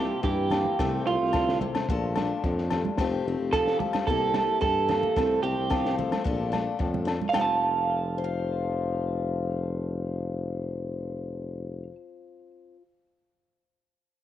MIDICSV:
0, 0, Header, 1, 7, 480
1, 0, Start_track
1, 0, Key_signature, -1, "major"
1, 0, Tempo, 547945
1, 681, Time_signature, 4, 2, 24, 8
1, 12466, End_track
2, 0, Start_track
2, 0, Title_t, "Clean electric guitar"
2, 0, Program_c, 0, 27
2, 0, Note_on_c, 0, 67, 73
2, 172, Note_off_c, 0, 67, 0
2, 211, Note_on_c, 0, 67, 63
2, 891, Note_off_c, 0, 67, 0
2, 935, Note_on_c, 0, 65, 76
2, 1376, Note_off_c, 0, 65, 0
2, 3089, Note_on_c, 0, 69, 90
2, 3319, Note_off_c, 0, 69, 0
2, 3565, Note_on_c, 0, 69, 70
2, 4011, Note_off_c, 0, 69, 0
2, 4043, Note_on_c, 0, 69, 78
2, 4728, Note_off_c, 0, 69, 0
2, 4755, Note_on_c, 0, 67, 71
2, 5206, Note_off_c, 0, 67, 0
2, 6387, Note_on_c, 0, 77, 65
2, 6440, Note_on_c, 0, 79, 56
2, 6490, Note_off_c, 0, 79, 0
2, 6494, Note_on_c, 0, 81, 77
2, 10361, Note_off_c, 0, 77, 0
2, 10468, Note_off_c, 0, 81, 0
2, 12466, End_track
3, 0, Start_track
3, 0, Title_t, "Steel-string acoustic guitar"
3, 0, Program_c, 1, 25
3, 0, Note_on_c, 1, 48, 69
3, 0, Note_on_c, 1, 58, 59
3, 0, Note_on_c, 1, 64, 58
3, 198, Note_off_c, 1, 48, 0
3, 202, Note_on_c, 1, 52, 60
3, 203, Note_off_c, 1, 64, 0
3, 215, Note_on_c, 1, 64, 54
3, 441, Note_off_c, 1, 58, 0
3, 451, Note_on_c, 1, 58, 54
3, 654, Note_off_c, 1, 52, 0
3, 659, Note_off_c, 1, 58, 0
3, 661, Note_off_c, 1, 64, 0
3, 699, Note_on_c, 1, 48, 67
3, 705, Note_on_c, 1, 57, 59
3, 712, Note_on_c, 1, 60, 57
3, 924, Note_off_c, 1, 60, 0
3, 935, Note_on_c, 1, 60, 58
3, 1168, Note_off_c, 1, 48, 0
3, 1172, Note_on_c, 1, 50, 59
3, 1407, Note_off_c, 1, 50, 0
3, 1415, Note_on_c, 1, 48, 63
3, 1627, Note_off_c, 1, 57, 0
3, 1648, Note_off_c, 1, 48, 0
3, 1649, Note_off_c, 1, 60, 0
3, 1661, Note_on_c, 1, 46, 70
3, 1668, Note_on_c, 1, 57, 46
3, 1677, Note_on_c, 1, 69, 61
3, 1904, Note_on_c, 1, 62, 56
3, 2136, Note_on_c, 1, 45, 57
3, 2369, Note_off_c, 1, 45, 0
3, 2382, Note_on_c, 1, 43, 59
3, 2586, Note_off_c, 1, 62, 0
3, 2587, Note_off_c, 1, 57, 0
3, 2593, Note_off_c, 1, 69, 0
3, 2611, Note_off_c, 1, 43, 0
3, 2612, Note_off_c, 1, 46, 0
3, 2614, Note_on_c, 1, 41, 65
3, 2621, Note_on_c, 1, 57, 56
3, 2629, Note_on_c, 1, 60, 57
3, 2634, Note_on_c, 1, 67, 65
3, 2856, Note_off_c, 1, 60, 0
3, 2871, Note_on_c, 1, 60, 55
3, 3094, Note_on_c, 1, 53, 64
3, 3095, Note_off_c, 1, 67, 0
3, 3105, Note_on_c, 1, 67, 63
3, 3319, Note_off_c, 1, 57, 0
3, 3329, Note_on_c, 1, 57, 54
3, 3539, Note_off_c, 1, 57, 0
3, 3541, Note_off_c, 1, 53, 0
3, 3547, Note_off_c, 1, 67, 0
3, 3569, Note_off_c, 1, 41, 0
3, 3569, Note_on_c, 1, 48, 62
3, 3577, Note_off_c, 1, 60, 0
3, 3577, Note_on_c, 1, 58, 46
3, 3584, Note_on_c, 1, 64, 53
3, 3590, Note_on_c, 1, 67, 66
3, 3793, Note_off_c, 1, 64, 0
3, 3803, Note_on_c, 1, 64, 55
3, 4034, Note_off_c, 1, 67, 0
3, 4035, Note_on_c, 1, 52, 58
3, 4044, Note_on_c, 1, 67, 60
3, 4047, Note_off_c, 1, 48, 0
3, 4268, Note_off_c, 1, 58, 0
3, 4279, Note_on_c, 1, 58, 54
3, 4492, Note_off_c, 1, 52, 0
3, 4494, Note_off_c, 1, 58, 0
3, 4496, Note_off_c, 1, 64, 0
3, 4497, Note_off_c, 1, 67, 0
3, 4521, Note_on_c, 1, 48, 64
3, 4527, Note_on_c, 1, 57, 52
3, 4534, Note_on_c, 1, 60, 54
3, 4750, Note_off_c, 1, 60, 0
3, 4760, Note_on_c, 1, 60, 55
3, 4992, Note_on_c, 1, 53, 57
3, 4993, Note_off_c, 1, 60, 0
3, 5003, Note_off_c, 1, 48, 0
3, 5004, Note_on_c, 1, 60, 49
3, 5232, Note_off_c, 1, 57, 0
3, 5243, Note_on_c, 1, 57, 50
3, 5451, Note_off_c, 1, 53, 0
3, 5456, Note_off_c, 1, 57, 0
3, 5470, Note_on_c, 1, 46, 61
3, 5477, Note_on_c, 1, 57, 54
3, 5478, Note_off_c, 1, 60, 0
3, 5481, Note_on_c, 1, 62, 54
3, 5490, Note_on_c, 1, 69, 61
3, 5699, Note_off_c, 1, 62, 0
3, 5710, Note_on_c, 1, 62, 53
3, 5947, Note_on_c, 1, 45, 53
3, 6174, Note_off_c, 1, 45, 0
3, 6410, Note_off_c, 1, 62, 0
3, 6413, Note_off_c, 1, 57, 0
3, 6420, Note_off_c, 1, 69, 0
3, 6422, Note_on_c, 1, 41, 52
3, 6437, Note_off_c, 1, 46, 0
3, 6438, Note_on_c, 1, 53, 50
3, 7166, Note_on_c, 1, 72, 57
3, 7218, Note_on_c, 1, 77, 59
3, 10432, Note_off_c, 1, 41, 0
3, 10448, Note_off_c, 1, 53, 0
3, 11175, Note_off_c, 1, 72, 0
3, 11228, Note_off_c, 1, 77, 0
3, 12466, End_track
4, 0, Start_track
4, 0, Title_t, "Tuba"
4, 0, Program_c, 2, 58
4, 0, Note_on_c, 2, 36, 78
4, 97, Note_off_c, 2, 36, 0
4, 213, Note_on_c, 2, 43, 85
4, 582, Note_off_c, 2, 43, 0
4, 695, Note_on_c, 2, 36, 90
4, 877, Note_off_c, 2, 36, 0
4, 937, Note_on_c, 2, 36, 87
4, 1029, Note_off_c, 2, 36, 0
4, 1063, Note_on_c, 2, 36, 68
4, 1519, Note_off_c, 2, 36, 0
4, 1658, Note_on_c, 2, 34, 80
4, 2026, Note_off_c, 2, 34, 0
4, 2139, Note_on_c, 2, 41, 85
4, 2506, Note_off_c, 2, 41, 0
4, 2616, Note_on_c, 2, 29, 90
4, 2798, Note_off_c, 2, 29, 0
4, 2850, Note_on_c, 2, 29, 96
4, 2945, Note_off_c, 2, 29, 0
4, 2978, Note_on_c, 2, 29, 72
4, 3252, Note_off_c, 2, 29, 0
4, 3568, Note_on_c, 2, 36, 73
4, 3940, Note_off_c, 2, 36, 0
4, 4048, Note_on_c, 2, 43, 80
4, 4420, Note_off_c, 2, 43, 0
4, 4530, Note_on_c, 2, 36, 86
4, 4714, Note_off_c, 2, 36, 0
4, 4761, Note_on_c, 2, 36, 81
4, 4861, Note_off_c, 2, 36, 0
4, 4890, Note_on_c, 2, 36, 68
4, 5352, Note_off_c, 2, 36, 0
4, 5485, Note_on_c, 2, 34, 81
4, 5859, Note_off_c, 2, 34, 0
4, 5956, Note_on_c, 2, 41, 69
4, 6333, Note_off_c, 2, 41, 0
4, 6435, Note_on_c, 2, 29, 73
4, 10410, Note_off_c, 2, 29, 0
4, 12466, End_track
5, 0, Start_track
5, 0, Title_t, "Muted clean electric guitar strokes"
5, 3323, Note_on_c, 9, 29, 86
5, 3410, Note_off_c, 9, 29, 0
5, 12466, End_track
6, 0, Start_track
6, 0, Title_t, "Muted steel-string acoustic guitar strokes"
6, 1665, Note_on_c, 9, 29, 55
6, 1753, Note_off_c, 9, 29, 0
6, 4541, Note_on_c, 9, 29, 58
6, 4629, Note_off_c, 9, 29, 0
6, 6177, Note_on_c, 9, 29, 54
6, 6265, Note_off_c, 9, 29, 0
6, 6458, Note_on_c, 9, 29, 52
6, 6545, Note_off_c, 9, 29, 0
6, 12466, End_track
7, 0, Start_track
7, 0, Title_t, "Drums"
7, 204, Note_on_c, 9, 38, 22
7, 209, Note_on_c, 9, 36, 76
7, 292, Note_off_c, 9, 38, 0
7, 297, Note_off_c, 9, 36, 0
7, 441, Note_on_c, 9, 64, 55
7, 450, Note_on_c, 9, 68, 55
7, 458, Note_on_c, 9, 38, 66
7, 528, Note_off_c, 9, 64, 0
7, 537, Note_off_c, 9, 68, 0
7, 546, Note_off_c, 9, 38, 0
7, 570, Note_on_c, 9, 63, 60
7, 658, Note_off_c, 9, 63, 0
7, 693, Note_on_c, 9, 68, 56
7, 695, Note_on_c, 9, 36, 74
7, 697, Note_on_c, 9, 38, 69
7, 781, Note_off_c, 9, 68, 0
7, 782, Note_off_c, 9, 36, 0
7, 784, Note_off_c, 9, 38, 0
7, 1165, Note_on_c, 9, 68, 64
7, 1175, Note_on_c, 9, 36, 80
7, 1181, Note_on_c, 9, 38, 62
7, 1252, Note_off_c, 9, 68, 0
7, 1262, Note_off_c, 9, 36, 0
7, 1269, Note_off_c, 9, 38, 0
7, 1303, Note_on_c, 9, 38, 60
7, 1390, Note_off_c, 9, 38, 0
7, 1410, Note_on_c, 9, 63, 56
7, 1410, Note_on_c, 9, 64, 57
7, 1497, Note_off_c, 9, 63, 0
7, 1497, Note_off_c, 9, 64, 0
7, 1531, Note_on_c, 9, 68, 59
7, 1537, Note_on_c, 9, 38, 66
7, 1538, Note_on_c, 9, 63, 56
7, 1619, Note_off_c, 9, 68, 0
7, 1625, Note_off_c, 9, 38, 0
7, 1625, Note_off_c, 9, 63, 0
7, 1653, Note_on_c, 9, 36, 81
7, 1741, Note_off_c, 9, 36, 0
7, 1889, Note_on_c, 9, 68, 56
7, 1893, Note_on_c, 9, 63, 64
7, 1901, Note_on_c, 9, 38, 67
7, 1976, Note_off_c, 9, 68, 0
7, 1981, Note_off_c, 9, 63, 0
7, 1989, Note_off_c, 9, 38, 0
7, 2134, Note_on_c, 9, 38, 22
7, 2135, Note_on_c, 9, 36, 67
7, 2221, Note_off_c, 9, 38, 0
7, 2222, Note_off_c, 9, 36, 0
7, 2262, Note_on_c, 9, 38, 23
7, 2350, Note_off_c, 9, 38, 0
7, 2369, Note_on_c, 9, 68, 60
7, 2375, Note_on_c, 9, 64, 57
7, 2381, Note_on_c, 9, 38, 65
7, 2457, Note_off_c, 9, 68, 0
7, 2462, Note_off_c, 9, 64, 0
7, 2468, Note_off_c, 9, 38, 0
7, 2497, Note_on_c, 9, 63, 73
7, 2585, Note_off_c, 9, 63, 0
7, 2605, Note_on_c, 9, 38, 62
7, 2611, Note_on_c, 9, 36, 76
7, 2611, Note_on_c, 9, 68, 56
7, 2693, Note_off_c, 9, 38, 0
7, 2698, Note_off_c, 9, 36, 0
7, 2699, Note_off_c, 9, 68, 0
7, 3087, Note_on_c, 9, 38, 61
7, 3089, Note_on_c, 9, 68, 57
7, 3091, Note_on_c, 9, 36, 79
7, 3175, Note_off_c, 9, 38, 0
7, 3176, Note_off_c, 9, 68, 0
7, 3178, Note_off_c, 9, 36, 0
7, 3216, Note_on_c, 9, 38, 60
7, 3304, Note_off_c, 9, 38, 0
7, 3329, Note_on_c, 9, 63, 59
7, 3329, Note_on_c, 9, 64, 64
7, 3417, Note_off_c, 9, 63, 0
7, 3417, Note_off_c, 9, 64, 0
7, 3445, Note_on_c, 9, 68, 64
7, 3456, Note_on_c, 9, 38, 65
7, 3459, Note_on_c, 9, 63, 63
7, 3532, Note_off_c, 9, 68, 0
7, 3543, Note_off_c, 9, 38, 0
7, 3546, Note_off_c, 9, 63, 0
7, 3569, Note_on_c, 9, 36, 77
7, 3657, Note_off_c, 9, 36, 0
7, 3802, Note_on_c, 9, 38, 63
7, 3804, Note_on_c, 9, 68, 58
7, 3805, Note_on_c, 9, 63, 66
7, 3889, Note_off_c, 9, 38, 0
7, 3892, Note_off_c, 9, 63, 0
7, 3892, Note_off_c, 9, 68, 0
7, 4047, Note_on_c, 9, 36, 75
7, 4047, Note_on_c, 9, 38, 21
7, 4134, Note_off_c, 9, 38, 0
7, 4135, Note_off_c, 9, 36, 0
7, 4285, Note_on_c, 9, 64, 63
7, 4286, Note_on_c, 9, 68, 55
7, 4291, Note_on_c, 9, 38, 62
7, 4372, Note_off_c, 9, 64, 0
7, 4374, Note_off_c, 9, 68, 0
7, 4379, Note_off_c, 9, 38, 0
7, 4409, Note_on_c, 9, 63, 72
7, 4496, Note_off_c, 9, 63, 0
7, 4526, Note_on_c, 9, 36, 77
7, 4530, Note_on_c, 9, 38, 62
7, 4531, Note_on_c, 9, 68, 54
7, 4614, Note_off_c, 9, 36, 0
7, 4617, Note_off_c, 9, 38, 0
7, 4619, Note_off_c, 9, 68, 0
7, 4997, Note_on_c, 9, 38, 57
7, 4998, Note_on_c, 9, 68, 58
7, 5003, Note_on_c, 9, 36, 76
7, 5085, Note_off_c, 9, 38, 0
7, 5086, Note_off_c, 9, 68, 0
7, 5091, Note_off_c, 9, 36, 0
7, 5129, Note_on_c, 9, 38, 54
7, 5217, Note_off_c, 9, 38, 0
7, 5246, Note_on_c, 9, 64, 62
7, 5333, Note_off_c, 9, 64, 0
7, 5362, Note_on_c, 9, 38, 63
7, 5362, Note_on_c, 9, 68, 56
7, 5370, Note_on_c, 9, 63, 55
7, 5450, Note_off_c, 9, 38, 0
7, 5450, Note_off_c, 9, 68, 0
7, 5457, Note_off_c, 9, 63, 0
7, 5480, Note_on_c, 9, 36, 71
7, 5567, Note_off_c, 9, 36, 0
7, 5719, Note_on_c, 9, 38, 59
7, 5720, Note_on_c, 9, 68, 54
7, 5727, Note_on_c, 9, 63, 58
7, 5807, Note_off_c, 9, 38, 0
7, 5808, Note_off_c, 9, 68, 0
7, 5814, Note_off_c, 9, 63, 0
7, 5953, Note_on_c, 9, 38, 20
7, 5957, Note_on_c, 9, 36, 69
7, 6041, Note_off_c, 9, 38, 0
7, 6044, Note_off_c, 9, 36, 0
7, 6082, Note_on_c, 9, 63, 54
7, 6082, Note_on_c, 9, 64, 53
7, 6169, Note_off_c, 9, 63, 0
7, 6169, Note_off_c, 9, 64, 0
7, 6195, Note_on_c, 9, 38, 65
7, 6199, Note_on_c, 9, 68, 55
7, 6282, Note_off_c, 9, 38, 0
7, 6287, Note_off_c, 9, 68, 0
7, 6320, Note_on_c, 9, 63, 65
7, 6408, Note_off_c, 9, 63, 0
7, 6425, Note_on_c, 9, 38, 67
7, 6431, Note_on_c, 9, 68, 82
7, 6446, Note_on_c, 9, 63, 74
7, 6512, Note_off_c, 9, 38, 0
7, 6519, Note_off_c, 9, 68, 0
7, 6534, Note_off_c, 9, 63, 0
7, 12466, End_track
0, 0, End_of_file